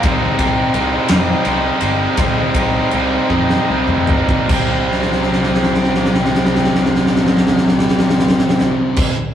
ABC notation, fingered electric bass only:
X:1
M:6/8
L:1/8
Q:3/8=49
K:Cm
V:1 name="Fingered electric bass" clef=bass
C,, C,, C,, F,, C,, G,,, | C,, C,, C,, F,, C,, G,,, | C,,6- | C,,4- C,, z |]